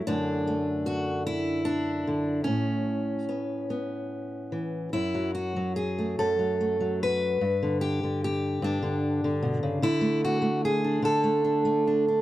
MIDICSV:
0, 0, Header, 1, 2, 480
1, 0, Start_track
1, 0, Tempo, 801068
1, 29, Time_signature, 6, 3, 24, 8
1, 1949, Tempo, 840336
1, 3869, Tempo, 808625
1, 7195, End_track
2, 0, Start_track
2, 0, Title_t, "Steel-string acoustic guitar"
2, 0, Program_c, 0, 25
2, 42, Note_on_c, 0, 62, 91
2, 44, Note_on_c, 0, 42, 70
2, 47, Note_on_c, 0, 50, 43
2, 49, Note_on_c, 0, 57, 43
2, 282, Note_off_c, 0, 57, 0
2, 284, Note_on_c, 0, 57, 45
2, 516, Note_on_c, 0, 66, 85
2, 749, Note_off_c, 0, 66, 0
2, 758, Note_on_c, 0, 64, 84
2, 981, Note_off_c, 0, 62, 0
2, 989, Note_on_c, 0, 62, 77
2, 1231, Note_off_c, 0, 50, 0
2, 1243, Note_on_c, 0, 50, 54
2, 1441, Note_off_c, 0, 42, 0
2, 1460, Note_off_c, 0, 62, 0
2, 1462, Note_on_c, 0, 61, 72
2, 1470, Note_off_c, 0, 64, 0
2, 1473, Note_off_c, 0, 50, 0
2, 1480, Note_on_c, 0, 45, 59
2, 1966, Note_off_c, 0, 57, 0
2, 1969, Note_on_c, 0, 59, 40
2, 2195, Note_off_c, 0, 59, 0
2, 2205, Note_on_c, 0, 59, 42
2, 2673, Note_on_c, 0, 52, 50
2, 2881, Note_off_c, 0, 52, 0
2, 2887, Note_off_c, 0, 59, 0
2, 2906, Note_off_c, 0, 61, 0
2, 2907, Note_on_c, 0, 64, 72
2, 2914, Note_off_c, 0, 45, 0
2, 2914, Note_on_c, 0, 42, 57
2, 3030, Note_on_c, 0, 54, 57
2, 3143, Note_off_c, 0, 64, 0
2, 3145, Note_on_c, 0, 66, 69
2, 3262, Note_off_c, 0, 54, 0
2, 3269, Note_on_c, 0, 54, 56
2, 3379, Note_off_c, 0, 66, 0
2, 3382, Note_on_c, 0, 68, 72
2, 3510, Note_on_c, 0, 57, 37
2, 3620, Note_off_c, 0, 42, 0
2, 3624, Note_off_c, 0, 68, 0
2, 3626, Note_on_c, 0, 69, 77
2, 3627, Note_on_c, 0, 42, 67
2, 3734, Note_off_c, 0, 54, 0
2, 3741, Note_on_c, 0, 54, 50
2, 3858, Note_off_c, 0, 57, 0
2, 3865, Note_on_c, 0, 57, 41
2, 3976, Note_off_c, 0, 54, 0
2, 3983, Note_on_c, 0, 54, 54
2, 4113, Note_off_c, 0, 69, 0
2, 4115, Note_on_c, 0, 71, 90
2, 4322, Note_off_c, 0, 54, 0
2, 4324, Note_off_c, 0, 57, 0
2, 4325, Note_off_c, 0, 42, 0
2, 4343, Note_on_c, 0, 43, 66
2, 4470, Note_on_c, 0, 50, 58
2, 4578, Note_off_c, 0, 71, 0
2, 4580, Note_on_c, 0, 67, 80
2, 4704, Note_off_c, 0, 50, 0
2, 4711, Note_on_c, 0, 50, 56
2, 4826, Note_off_c, 0, 67, 0
2, 4836, Note_on_c, 0, 67, 81
2, 5054, Note_off_c, 0, 43, 0
2, 5061, Note_on_c, 0, 43, 73
2, 5074, Note_on_c, 0, 62, 78
2, 5174, Note_off_c, 0, 50, 0
2, 5181, Note_on_c, 0, 50, 60
2, 5422, Note_off_c, 0, 50, 0
2, 5429, Note_on_c, 0, 50, 59
2, 5538, Note_on_c, 0, 47, 63
2, 5550, Note_off_c, 0, 67, 0
2, 5656, Note_off_c, 0, 47, 0
2, 5658, Note_on_c, 0, 49, 63
2, 5753, Note_off_c, 0, 43, 0
2, 5767, Note_off_c, 0, 50, 0
2, 5774, Note_on_c, 0, 50, 66
2, 5779, Note_on_c, 0, 64, 94
2, 5782, Note_off_c, 0, 49, 0
2, 5788, Note_off_c, 0, 62, 0
2, 5886, Note_on_c, 0, 57, 63
2, 6022, Note_off_c, 0, 64, 0
2, 6025, Note_on_c, 0, 66, 87
2, 6119, Note_off_c, 0, 57, 0
2, 6126, Note_on_c, 0, 57, 59
2, 6262, Note_off_c, 0, 66, 0
2, 6264, Note_on_c, 0, 68, 88
2, 6380, Note_on_c, 0, 62, 43
2, 6480, Note_off_c, 0, 50, 0
2, 6487, Note_on_c, 0, 50, 76
2, 6499, Note_off_c, 0, 68, 0
2, 6502, Note_on_c, 0, 69, 88
2, 6606, Note_off_c, 0, 57, 0
2, 6613, Note_on_c, 0, 57, 57
2, 6730, Note_off_c, 0, 62, 0
2, 6737, Note_on_c, 0, 62, 46
2, 6851, Note_off_c, 0, 57, 0
2, 6859, Note_on_c, 0, 57, 61
2, 6982, Note_off_c, 0, 62, 0
2, 6991, Note_on_c, 0, 62, 46
2, 7108, Note_off_c, 0, 62, 0
2, 7115, Note_on_c, 0, 62, 44
2, 7195, Note_off_c, 0, 50, 0
2, 7195, Note_off_c, 0, 57, 0
2, 7195, Note_off_c, 0, 62, 0
2, 7195, Note_off_c, 0, 69, 0
2, 7195, End_track
0, 0, End_of_file